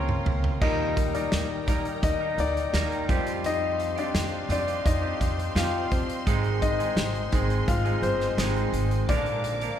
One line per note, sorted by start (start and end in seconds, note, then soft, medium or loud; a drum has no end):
0.00 0.20 C#2 medium
0.00 0.23 C#3 medium
0.00 0.62 F3 medium
0.00 0.62 A#3 medium
0.00 0.62 C4 medium
0.00 0.63 F4 medium
0.00 0.58 A#4 medium
0.00 0.63 A#4 medium
0.00 0.64 A#4 medium
0.00 0.64 C#5 medium
0.00 0.57 F5 medium
0.00 0.57 A#5 medium
0.00 0.57 C6 medium
0.09 mid tom medium
0.26 0.55 C#2 medium
0.26 floor tom medium
0.44 floor tom medium
0.60 1.19 D#2 loud
0.60 3.05 A#2 medium
0.60 1.15 D#3 medium
0.60 3.05 G3 soft
0.60 1.15 G3 medium
0.60 3.05 A#3 medium
0.60 1.15 A#3 medium
0.60 3.06 D#4 medium
0.60 1.12 D#4 medium
0.60 1.15 D#4 medium
0.60 3.06 A#4 medium
0.60 1.14 A#4 medium
0.60 1.11 D#5 medium
0.60 3.06 G5 medium
0.60 3.06 A#5 medium
0.60 kick loud
0.60 crash medium
0.97 kick medium
0.97 closed hi-hat medium
1.15 1.67 A#3 soft
1.15 1.64 D#4 medium
1.15 1.68 D#4 soft
1.15 1.68 A#4 medium
1.15 1.67 D5 medium
1.15 closed hi-hat medium
1.32 1.61 D#2 medium
1.32 snare loud
1.32 closed hi-hat medium
1.67 1.97 D#2 medium
1.67 2.20 G3 medium
1.67 2.21 A#3 medium
1.67 2.01 D#4 medium
1.67 2.21 D#4 medium
1.67 2.19 A#4 medium
1.67 2.04 D5 medium
1.67 kick medium
1.67 closed hi-hat medium
1.85 closed hi-hat soft
2.02 2.32 D#2 loud
2.02 2.37 D#4 medium
2.02 2.40 D#5 medium
2.02 kick medium
2.02 closed hi-hat medium
2.20 2.73 A#3 soft
2.20 2.74 D#4 medium
2.20 2.73 A#4 medium
2.38 2.67 D2 medium
2.38 3.41 D#4 medium
2.38 3.48 D5 loud
2.38 closed hi-hat medium
2.57 closed hi-hat soft
2.73 3.02 D#2 medium
2.73 3.09 D#3 medium
2.73 3.08 G3 medium
2.73 3.09 A#3 medium
2.73 3.09 D#4 medium
2.73 3.10 A#4 medium
2.73 snare medium
2.73 closed hi-hat medium
2.92 closed hi-hat soft
3.09 3.96 F2 medium
3.09 3.97 F3 medium
3.09 3.56 F3 soft
3.09 3.56 G3 soft
3.09 3.98 C4 medium
3.09 3.56 C4 medium
3.09 3.97 F4 medium
3.09 6.24 G4 medium
3.09 3.95 G4 medium
3.09 9.05 C5 medium
3.09 6.24 F5 medium
3.09 9.05 C6 medium
3.09 kick loud
3.09 closed hi-hat medium
3.27 closed hi-hat medium
3.44 3.95 D#4 medium
3.44 4.00 D#5 loud
3.44 closed hi-hat medium
3.80 closed hi-hat medium
3.96 4.49 C4 soft
3.96 4.47 D4 medium
3.96 4.50 F4 medium
3.96 4.50 G4 medium
3.96 4.51 D5 medium
3.96 closed hi-hat medium
4.14 4.43 F2 loud
4.14 snare medium
4.14 closed hi-hat medium
4.49 4.78 F2 medium
4.49 5.03 F3 medium
4.49 5.03 C4 medium
4.49 4.84 D4 medium
4.49 5.02 F4 medium
4.49 5.01 G4 medium
4.49 4.87 D5 medium
4.49 closed hi-hat medium
4.68 closed hi-hat soft
4.85 5.14 F2 loud
4.85 5.53 D#4 medium
4.85 5.59 D#5 loud
4.85 kick medium
4.85 closed hi-hat medium
5.02 5.54 C4 soft
5.02 5.55 F4 medium
5.02 5.55 G4 medium
5.21 5.50 F2 medium
5.21 kick medium
5.21 closed hi-hat medium
5.39 closed hi-hat soft
5.55 5.85 F2 loud
5.55 6.26 F3 medium
5.55 6.26 C4 medium
5.55 6.27 F4 loud
5.55 5.90 F4 medium
5.55 6.27 G4 medium
5.55 5.93 F5 medium
5.55 snare loud
5.55 closed hi-hat medium
5.91 6.21 F2 medium
5.91 6.59 C4 medium
5.91 6.64 C5 medium
5.91 kick medium
5.91 closed hi-hat medium
6.10 closed hi-hat medium
6.26 6.85 G#1 medium
6.26 6.79 G#2 medium
6.26 6.79 D#3 medium
6.26 6.80 G#3 medium
6.26 6.80 C4 medium
6.26 6.79 D#4 loud
6.26 9.07 G#4 medium
6.26 6.78 G#4 medium
6.26 9.06 D#5 medium
6.26 kick loud
6.26 closed hi-hat medium
6.44 closed hi-hat soft
6.62 7.64 D#4 medium
6.62 7.71 D#5 loud
6.62 kick medium
6.62 closed hi-hat medium
6.79 7.31 G#3 soft
6.79 7.32 C4 medium
6.79 7.33 D#4 medium
6.79 7.32 G#4 medium
6.79 closed hi-hat medium
6.96 7.26 G#1 loud
6.96 snare loud
6.96 closed hi-hat medium
7.15 closed hi-hat soft
7.32 7.61 G#1 medium
7.32 9.05 D#3 medium
7.32 7.86 G#3 medium
7.32 9.05 G#3 soft
7.32 7.85 C4 medium
7.32 8.02 C4 medium
7.32 7.84 D#4 medium
7.32 7.83 G#4 medium
7.32 kick medium
7.32 closed hi-hat medium
7.50 closed hi-hat soft
7.68 7.97 G#1 loud
7.68 8.01 F4 medium
7.68 8.04 F5 medium
7.68 kick medium
7.68 closed hi-hat medium
7.85 8.38 G#3 soft
7.85 8.38 C4 medium
7.85 8.39 D#4 medium
7.85 8.38 G#4 medium
7.85 closed hi-hat soft
8.02 8.32 G1 medium
8.02 8.70 C4 medium
8.02 8.70 C5 loud
8.02 closed hi-hat medium
8.21 snare soft
8.21 closed hi-hat soft
8.37 8.67 G#1 medium
8.37 9.09 G#2 medium
8.37 9.09 D#3 medium
8.37 9.09 G#3 medium
8.37 9.10 C4 loud
8.37 9.10 D#4 medium
8.37 9.10 G#4 loud
8.37 snare loud
8.37 closed hi-hat medium
8.57 closed hi-hat soft
8.73 9.02 G#1 medium
8.73 closed hi-hat medium
8.91 closed hi-hat medium
9.09 9.67 A#1 medium
9.09 9.62 A#2 medium
9.09 9.63 D3 medium
9.09 9.63 F3 medium
9.09 9.62 A#3 medium
9.09 9.79 D4 medium
9.09 9.61 D4 medium
9.09 9.79 A#4 medium
9.09 9.61 A#4 loud
9.09 9.79 D5 medium
9.09 9.79 F5 medium
9.09 9.79 D6 medium
9.09 kick loud
9.09 closed hi-hat medium
9.26 closed hi-hat soft
9.44 closed hi-hat medium
9.61 9.79 F3 soft
9.61 9.79 A#3 medium
9.61 9.79 D4 medium
9.61 9.79 A#4 medium
9.61 closed hi-hat medium